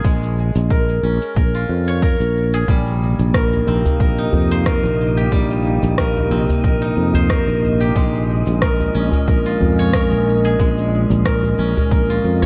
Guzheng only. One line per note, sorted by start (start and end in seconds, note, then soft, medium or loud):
0.00 1.03 C#4 medium
0.00 1.43 F4 medium
0.00 2.17 G#4 loud
0.00 0.70 A#4 medium
0.00 1.14 C#5 medium
0.04 2.74 G#3 medium
0.71 1.36 A#4 medium
1.03 3.74 C#4 medium
1.37 2.02 A#4 medium
1.55 4.07 F4 medium
1.88 3.74 C#5 medium
2.02 3.34 A#4 medium
2.54 2.75 G#4 loud
2.69 5.31 G3 medium
3.35 4.00 A#4 medium
3.68 6.31 C4 medium
4.00 4.66 A#4 medium
4.18 6.81 D#4 medium
4.51 6.49 C5 medium
4.66 5.97 A#4 medium
5.17 7.52 G4 loud
5.32 8.01 G3 medium
5.98 6.63 A#4 medium
6.31 9.01 C4 medium
6.64 7.29 A#4 medium
6.82 9.52 D#4 medium
7.15 9.01 C5 medium
7.30 8.61 A#4 medium
7.80 8.02 G4 loud
7.96 10.58 G#3 medium
8.62 9.27 A#4 medium
8.95 11.58 C#4 medium
9.28 9.93 A#4 medium
9.46 11.98 F4 medium
9.79 11.70 C#5 medium
9.94 11.25 A#4 medium
10.45 12.46 G#4 loud
10.60 12.46 G#3 medium
11.25 11.91 A#4 loud
11.59 12.46 C#4 medium
11.92 12.46 A#4 medium
12.10 12.46 F4 medium
12.42 12.46 C#5 medium